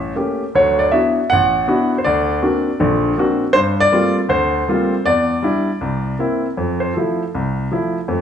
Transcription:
Already playing: A1 E5
0.15 A3 A#3 C#4 G4
0.55 D2 F#3 C#5
0.79 D5
0.92 B3 D4 E4 F#4 E5
1.30 A1 F#5
1.68 B3 D4 E4 F#4
1.98 C5
2.04 D2 D5
2.42 A#3 C4 D4 F#4
2.80 A#1 D3
3.17 A#3 C4 D4 F#4
3.53 G2 C5
3.80 D5
3.92 G3 A3 A#3 C4 F4
4.29 D2 C5
4.68 G3 A3 A#3 C4 F4
5.06 E2 D5
5.42 G3 D4 E4
5.81 C2
6.19 A#3 C4 E4
6.57 F2
6.80 C5
6.94 F3 A3 E4 A4
7.35 C2
7.71 F3 A3 E4
8.08 F2 A3

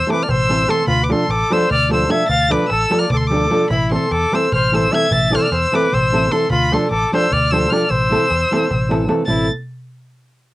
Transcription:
Already playing: C5 E6
0.07 E3 A3 C4 E4 A4, darbuka tek
0.12 B4 D6
0.23 D5 F6
0.29 A1 C5 E6, darbuka dum
0.49 E3 A3 C4 E4 A4, darbuka tek
0.59 darbuka tek
0.67 E3 A3 C4 E4 A4 C6, darbuka tek
0.87 D2 F4 B5, darbuka dum
1.03 B4 D6
1.09 F3 A3 D4 F4 A4 C6, darbuka tek
1.29 A1 A4 D6, darbuka tek
1.50 F3 A3 D4 F4 A4 C5 E6, darbuka tek
1.71 D2 D5 F6, darbuka dum
1.89 F3 A3 D4 F4 A4 C5, darbuka tek
1.93 E6
2.01 darbuka tek
2.08 F3 A3 D4 F4 A4 E5 G#6, darbuka tek
2.28 D2 F5 A6, darbuka dum
2.49 F3 A3 D4 F4 A4 B4 D6, darbuka tek
2.69 A1 A4 E6, darbuka tek
2.90 F3 A3 D4 F4 A4, darbuka tek
2.99 D5 F6, darbuka tek
3.10 D2 A4 D6, darbuka dum
3.17 A4 C6
3.27 F3 A4 D6
3.31 A3 D4 F4 A4, darbuka tek
3.50 F3 A3 D4 F4 A4, darbuka tek
3.70 A1 E4 B5, darbuka dum
3.90 E3 A3 C4 E4 A4 C6, darbuka tek
4.11 E2 A4 D6, darbuka tek
4.32 E3 A3 C4 E4 A4 C5 E6, darbuka tek
4.52 A1 C5 F6, darbuka dum
4.72 E3 A3 C4 E4 A4 C5 E6, darbuka tek
4.91 E3 A3 C4 E4 A4 E5 G#6, darbuka tek
5.11 A1 E5 A6, darbuka dum
5.30 E3 A3 C4 E4 A4 D5, darbuka tek
5.34 C5 E6 F6
5.42 D5 F6
5.52 E2 C5 E6, darbuka tek
5.72 E3 A3 C4 E4 A4 B4 D6, darbuka tek
5.92 A1 C5 E6, darbuka dum
6.12 E3 A3 C4 E4 A4
6.23 darbuka tek
6.31 E3 A3 C4 E4 A4 C6
6.50 D2 F4 B5, darbuka dum
6.72 F3 A3 D4 F4 A4 C6, darbuka tek
6.91 A1 A4 D6, darbuka tek
7.12 F3 A3 D4 F4 A4 C5 E6, darbuka tek
7.32 D2 D5 F6, darbuka dum
7.51 F3 A3 D4 F4 A4 C5 E6, darbuka tek
7.64 darbuka tek
7.70 F3 A3 D4 F4 A4 D5 F6, darbuka tek
7.89 A1 C5 E6, darbuka dum
8.01 darbuka tek
8.10 E3 A3 C4 E4 A4, darbuka tek
8.21 darbuka tek
8.30 E2, darbuka tek
8.51 E3 A3 C4 E4 A4, darbuka tek
8.61 darbuka tek
8.71 A1, darbuka dum
8.89 E3 A3 C4 E4 A4, darbuka tek
9.01 darbuka tek
9.07 E3 A3 C4 E4 A4, darbuka tek
9.19 darbuka tek
9.26 A1 A3 C4 E4 A4 A6, darbuka dum

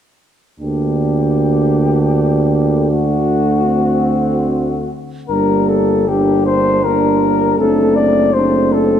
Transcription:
0.60 D2 D3 A#3 D4 G4
2.90 A3 F#4
3.64 C4
5.29 G1 G3 A#3 D4 A#4
5.69 A4
6.08 G3 A#3 D4 G4
6.46 C5
6.84 G3 A#3 D4 A#4
7.58 F#1 A3 C4 D4 A4
7.96 D5
8.34 A3 C4 D4 C5
8.73 A4

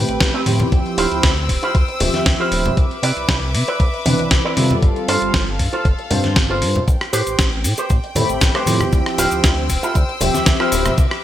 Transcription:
Already playing: A3 C4 G4 B4 G5
0.09 A1, muted clean electric guitar stroke, closed hi-hat
0.20 A1, kick, snare, closed hi-hat
0.34 A3 C4 G4 B4
0.45 A2 F3 C4 E4 G4, open hi-hat, high conga
0.60 closed hi-hat, high conga, low conga
0.72 D2 C5 E6, kick, closed hi-hat
0.86 closed hi-hat
0.98 D1 E4 F4 G4 C5, open hi-hat
1.11 D2 F3 C4 E4 G4, closed hi-hat
1.23 D2, kick, snare, closed hi-hat
1.37 closed hi-hat
1.49 D1, kick, open hi-hat
1.63 E4 F4 G4 C5, closed hi-hat
1.75 D2, kick, closed hi-hat
1.88 muted clean electric guitar stroke, closed hi-hat
1.99 D1 F3 C4 G4 E5, muted clean electric guitar stroke, open hi-hat, low conga
2.13 D2, muted clean electric guitar stroke, snare, closed hi-hat, high conga
2.26 D2, kick, snare, closed hi-hat
2.40 E4 F4 G4 C5
2.52 D1, open hi-hat
2.66 closed hi-hat, low conga
2.77 C2 B4 E5 D6, kick, closed hi-hat
2.91 closed hi-hat
3.03 C3 E4 B4 D5, open hi-hat
3.17 C2, closed hi-hat
3.29 C2, kick, snare, closed hi-hat
3.42 closed hi-hat
3.54 C3, open hi-hat
3.68 E4 B4 D5, closed hi-hat
3.80 C2, kick, closed hi-hat
3.94 muted clean electric guitar stroke, closed hi-hat
4.05 C3 E3 C4 D4 B4, muted clean electric guitar stroke, open hi-hat, high conga, low conga
4.19 C2, muted clean electric guitar stroke, closed hi-hat
4.31 C2, kick, snare, closed hi-hat
4.44 E3 C4 D4 E4 B4 D5
4.56 C3 G3 C4 F4 A4, open hi-hat, high conga
4.71 high conga, low conga
4.82 G1 A4 F5, kick, closed hi-hat
4.96 closed hi-hat
5.08 G2 F4 A4 C5, open hi-hat
5.21 G1 G3 C4 F4 A4, closed hi-hat
5.34 G1, kick, snare, closed hi-hat
5.48 closed hi-hat
5.59 G2, kick, open hi-hat
5.73 F4 A4 C5, closed hi-hat
5.85 G1, kick, closed hi-hat
5.99 muted clean electric guitar stroke, closed hi-hat
6.11 G2 G3 C4 F4 C5, muted clean electric guitar stroke, open hi-hat, low conga
6.24 muted clean electric guitar stroke, snare, closed hi-hat, high conga
6.36 G1, kick, snare, closed hi-hat
6.50 F4 A4 C5
6.62 G2, open hi-hat
6.76 closed hi-hat, low conga
6.88 A1 G5, kick, closed hi-hat, cabasa
7.01 cross-stick, closed hi-hat
7.13 A2 G4 B4 C5, open hi-hat, cabasa
7.27 A1, closed hi-hat, cabasa
7.39 A1, kick, snare, closed hi-hat, cabasa
7.52 closed hi-hat
7.64 A2, open hi-hat, cabasa
7.78 G4 B4 C5, closed hi-hat, cabasa
7.89 A1, kick, closed hi-hat, cabasa
8.04 muted clean electric guitar stroke, closed hi-hat
8.15 A2 A3 C4 G4 B5, muted clean electric guitar stroke, open hi-hat, high conga, low conga, cabasa
8.29 A1, muted clean electric guitar stroke, closed hi-hat, cabasa
8.41 A1, kick, snare, closed hi-hat, cabasa
8.54 A3 C4 G4 B4 C5, cross-stick
8.66 A2 F3 C4 E4 G4, open hi-hat, high conga, cabasa
8.80 cross-stick, closed hi-hat, high conga, low conga, cabasa
8.92 D2 C5 E6, kick, closed hi-hat, cabasa
9.06 cross-stick, closed hi-hat
9.18 D1 E4 F4 G4 C5, open hi-hat, cabasa
9.31 D2 F3 C4 E4 G4, closed hi-hat, cabasa
9.44 D2, kick, snare, closed hi-hat, cabasa
9.58 closed hi-hat
9.69 D1, kick, open hi-hat, cabasa
9.83 E4 F4 G4 A4, closed hi-hat, cabasa
9.95 D2, kick, closed hi-hat, cabasa
10.09 muted clean electric guitar stroke, closed hi-hat
10.20 D1 F3 C4 G4 E5, muted clean electric guitar stroke, open hi-hat, low conga, cabasa
10.34 D2, muted clean electric guitar stroke, snare, closed hi-hat, high conga, cabasa
10.46 D2, kick, snare, closed hi-hat, cabasa
10.60 E4 F4 G4 C5, cross-stick
10.72 D1, open hi-hat, cabasa
10.85 cross-stick, closed hi-hat, low conga, cabasa
10.98 C2 B4 E5 D6, kick, closed hi-hat, cabasa
11.11 cross-stick, closed hi-hat

